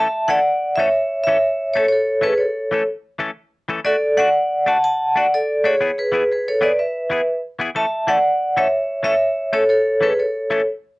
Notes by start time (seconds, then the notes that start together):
Already playing: A5
0.00 E5
0.28 E3 A3 C#4 A4 D5 F#5
0.76 E3 A3 C#5 E5
0.80 C#4 A4
1.24 E3 C#5 E5
1.28 C#4 A4
1.74 A3 C#4 A4 C#5
1.89 C#5
1.93 A4
2.21 E3 A3 C#4 A4 B4
2.26 G#4
2.38 A4 C#5
2.72 E3 A3 C#4 A4
3.19 E3 A3 C#4 A4
3.69 E3 A3 C#4 A4
3.85 A3 F#4 A4 D5, muted clean electric guitar stroke
4.17 A3 D4 F#4 D5 F#5
4.66 A3 D4 F#4 F#5 A5
4.84 F#5 A5
5.16 A3 D4 F#4 D5 F#5
5.34 A4 D5
5.64 A3 D4 F#4 G#4 C#5
5.81 E3 B3 E4 G#4
5.98 G#4 B4
6.12 E3 B3 E4 G#4
6.32 G#4 B4
6.48 A4 C#5
6.61 E3 B3 E4 G#4 B4 D5
6.79 B4 E5
7.10 E3 B3 E4 G#4
7.59 E3 B3 E4 G#4
7.75 E3 A3 C#4 A4 E5 A5
8.07 E3 A3 C#4 A4 D5 F#5
8.57 E3 A3 C#4 A4 C#5 E5
9.03 E3 A3 C#4 A4 C#5 E5
9.53 A3 C#4 A4 C#5
9.69 A4 C#5
10.01 E3 A3 C#4 G#4 A4 B4
10.19 A4 C#5
10.50 E3 A3 C#4 A4